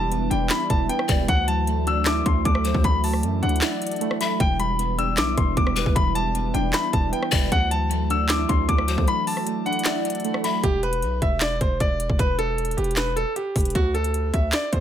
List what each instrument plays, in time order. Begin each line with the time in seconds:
Already playing: 808-style bass E1, synth keys E3 G3 B3 D4 E4, grand piano A5
0.12 synth keys B3, closed hi-hat
0.30 808-style bass E1, synth keys D4, grand piano G5, closed hi-hat
0.50 synth keys E4, grand piano B5, snare, clap, closed hi-hat
0.70 808-style bass E1, synth keys D4, grand piano A5, kick, closed hi-hat
0.89 synth keys B3, grand piano G5, closed hi-hat
0.99 cross-stick
1.08 808-style bass E1, synth keys G3, pan flute D5, kick, closed hi-hat
1.28 808-style bass D2, synth keys E3, grand piano F#5, kick, closed hi-hat
1.48 synth keys F#3, grand piano A5, closed hi-hat
1.67 synth keys A3, closed hi-hat
1.86 synth keys D4, grand piano E6, closed hi-hat
2.06 synth keys E4, grand piano D6, snare, clap, closed hi-hat
2.26 808-style bass D2, synth keys D4, grand piano C6, kick, closed hi-hat
2.45 808-style bass D2, synth keys A3, grand piano D6, kick, closed hi-hat
2.55 cross-stick
2.65 synth keys F#3, pan flute C5, closed hi-hat
2.74 808-style bass D2, kick
2.84 808-style bass D2, synth keys E3, grand piano B5, kick, closed hi-hat
3.03 synth keys F#3, grand piano A5, open hi-hat
3.13 cross-stick
3.23 808-style bass F#2, synth keys A3, closed hi-hat
3.42 808-style bass D2, synth keys D4, grand piano F#5, closed hi-hat
3.49 closed hi-hat
3.56 closed hi-hat
3.61 synth keys E4, pan flute D5, snare, clap, closed hi-hat
3.82 synth keys D4, closed hi-hat
3.87 closed hi-hat
3.92 closed hi-hat
3.96 closed hi-hat
4.01 synth keys A3, closed hi-hat
4.11 cross-stick
4.20 synth keys F#3, pan flute E5, grand piano B5, closed hi-hat
4.39 808-style bass E1, synth keys E3, grand piano G5, kick, closed hi-hat
4.59 synth keys G3, grand piano B5, closed hi-hat
4.79 synth keys B3, closed hi-hat
4.99 synth keys D4, grand piano E6, closed hi-hat
5.17 808-style bass B1, synth keys E4, grand piano D6, snare, clap, closed hi-hat
5.38 808-style bass E1, synth keys D4, grand piano C6, kick, closed hi-hat
5.57 808-style bass E1, synth keys B3, grand piano D6, kick, closed hi-hat
5.67 cross-stick
5.76 synth keys G3, pan flute B4, closed hi-hat
5.86 808-style bass E1, kick
5.96 808-style bass E1, synth keys E3, grand piano B5, kick, closed hi-hat
6.15 synth keys G3, grand piano A5, closed hi-hat
6.35 synth keys B3, closed hi-hat
6.53 808-style bass E1, synth keys D4, grand piano G5, closed hi-hat
6.73 synth keys E4, grand piano B5, snare, clap, closed hi-hat
6.93 808-style bass E1, synth keys D4, grand piano A5, kick, closed hi-hat
7.12 synth keys B3, grand piano G5, closed hi-hat
7.23 cross-stick
7.32 808-style bass E1, synth keys G3, pan flute D5, kick, closed hi-hat
7.52 808-style bass D2, synth keys E3, grand piano F#5, kick, closed hi-hat
7.71 synth keys F#3, grand piano A5, closed hi-hat
7.91 synth keys A3, closed hi-hat
8.10 synth keys D4, grand piano E6, closed hi-hat
8.29 synth keys E4, grand piano D6, snare, clap, closed hi-hat
8.49 808-style bass D2, synth keys D4, grand piano C6, kick, closed hi-hat
8.69 808-style bass D2, synth keys A3, grand piano D6, kick, closed hi-hat
8.78 cross-stick
8.88 synth keys F#3, pan flute C5, closed hi-hat
8.98 808-style bass D2, kick
9.07 synth keys E3, grand piano B5, closed hi-hat
9.27 synth keys F#3, grand piano A5, open hi-hat
9.37 cross-stick
9.47 synth keys A3, closed hi-hat
9.66 synth keys D4, grand piano F#5, closed hi-hat
9.73 closed hi-hat
9.79 closed hi-hat
9.85 synth keys E4, pan flute D5, snare, clap, closed hi-hat
10.05 synth keys D4, closed hi-hat
10.10 closed hi-hat
10.15 closed hi-hat
10.20 closed hi-hat
10.24 synth keys A3, closed hi-hat
10.34 cross-stick
10.44 synth keys F#3, pan flute E5, grand piano B5, closed hi-hat
10.64 808-style bass E1, grand piano G4, kick, closed hi-hat
10.83 grand piano B4, closed hi-hat
10.93 closed hi-hat
11.02 808-style bass B1, closed hi-hat
11.22 808-style bass E1, grand piano E5, kick, closed hi-hat
11.41 grand piano D5, snare, clap, closed hi-hat
11.61 808-style bass E1, grand piano C5, kick, closed hi-hat
11.80 808-style bass E1, grand piano D5, kick, closed hi-hat
12.00 closed hi-hat
12.10 808-style bass E1, kick
12.19 808-style bass E1, grand piano B4, kick, closed hi-hat
12.39 grand piano A4, closed hi-hat
12.58 closed hi-hat
12.65 closed hi-hat
12.71 closed hi-hat
12.77 808-style bass E1, grand piano G4, closed hi-hat
12.84 closed hi-hat
12.91 closed hi-hat
12.96 grand piano B4, snare, clap, closed hi-hat
13.16 grand piano A4, closed hi-hat
13.36 grand piano G4, closed hi-hat
13.56 808-style bass E1, kick, closed hi-hat, open hi-hat
13.61 closed hi-hat
13.65 closed hi-hat
13.70 closed hi-hat
13.75 808-style bass D2, grand piano F#4, kick, closed hi-hat
13.94 grand piano A4, closed hi-hat
14.04 closed hi-hat
14.14 closed hi-hat
14.34 808-style bass D2, grand piano E5, kick, closed hi-hat
14.52 grand piano D5, snare, clap, closed hi-hat
14.72 808-style bass D2, grand piano C5, kick, closed hi-hat